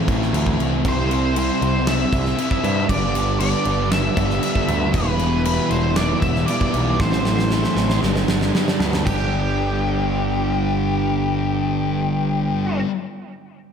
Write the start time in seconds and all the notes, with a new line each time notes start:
Already playing: A2 E3
0.08 A1 E3 A3 C4 E4, kick, crash
0.22 snare
0.33 D2 A2 E3 A3 C4 E4, crash
0.46 kick
0.59 C2 E3 A3, crash
0.85 C2 C3 G3 C4 E4 C5, kick, crash
1.09 G3 C4 E4, crash
1.13 C5
1.34 C3 G3 C4 E4, crash
1.39 C5
1.60 C2 G3 C4 E4, crash
1.87 E5, snare, crash
2.11 C2 G3 C4 E4, kick, crash
2.25 snare
2.37 C3 G3 C4 E4, crash
2.51 kick
2.63 G2 G3 C4, crash
2.88 G1 G2 D3 G3 B3 D4 D5, kick, crash
3.14 D3 G3 B3 D4, crash
3.39 G2 D3 G3 B3 D5, crash
3.43 D4
3.65 G1 G3 B3 D4, crash
3.92 E5, snare, crash
4.15 G1 D3 G3 B3 D4, kick, crash
4.20 G3
4.30 snare
4.41 G2 D3 G3 B3 D4, crash
4.55 kick
4.68 D2 D3 G3, crash
4.93 E1 E2 B2 E3 G3 B3 E4 B4, kick, crash
5.18 B2 E3 G3 B3 E4, crash
5.44 E2 B2 E3 G3 B3 E4 B4, crash
5.69 E1 G3 B3 E4 C5, crash
5.96 D5, snare, crash
6.20 E1 E3 B3 E4 E5, kick, crash
6.24 B2 G3
6.35 snare
6.46 E2 B2 E3 G3 B3 D5, crash
6.50 E4
6.61 kick
6.74 B1 B2 E3, crash
6.99 A1 A2 E3 A3 C4 E4 C5, kick, snare
7.12 snare
7.25 E3 A3 C4 E4, snare
7.39 snare
7.51 A2 E3 A3 C4 E4, snare
7.64 snare
7.76 A1 A3 C4 E4, snare
7.90 snare
8.02 G1 G2 D3 G3 B3 D4, snare
8.16 snare
8.28 G1 G3 B3 D4, snare
8.32 D3
8.41 snare
8.55 G2 D3 G3 B3 D4, snare
8.68 snare
8.80 D2 D3 G3, snare
8.93 snare
9.05 G1 G2 D3 G3 B3 G4, kick, crash
9.10 D4